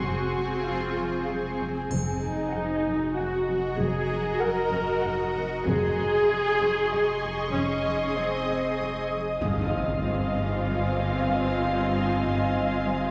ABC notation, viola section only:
X:1
M:3/4
L:1/8
Q:1/4=96
K:Abmix
V:1 name="Viola section"
G2 F2 z2 | z E3 G2 | A2 B3 z | A6 |
D2 C3 z | [K:Fdor] [CF]6- | [CF]6 |]